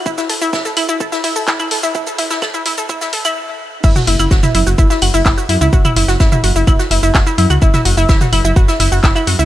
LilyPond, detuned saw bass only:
\new Staff \with { instrumentName = "Detuned saw bass" } { \clef bass \time 4/4 \key fis \minor \tempo 4 = 127 r1 | r1 | fis,,16 r16 fis,,16 fis,,16 fis,,16 r16 fis,,16 fis,,16 fis,,16 r16 fis,,16 fis,,16 fis,,16 r16 fis,16 cis,16 | fis,,16 r16 fis,,16 fis,,16 fis,,16 r16 fis,,16 fis,,16 fis,,16 r16 fis,,16 fis,,16 fis,,16 r16 fis,16 cis,16 |
fis,,16 r16 fis,,16 fis,,16 fis,,16 r16 fis,,16 fis,,16 fis,,16 r16 fis,,16 fis,,16 fis,,16 r16 fis,16 cis,16 | }